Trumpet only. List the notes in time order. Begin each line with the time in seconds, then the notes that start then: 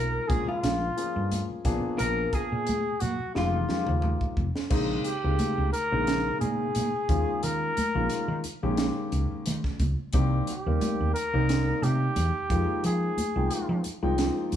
Already playing: A#4
0.28 G#4
0.50 F4
1.99 A#4
2.34 G#4
3.00 F#4
3.35 F4
5.06 G4
5.73 A#4
6.41 G#4
7.44 A#4
10.50 G4
11.14 A#4
11.83 G4
12.86 G#4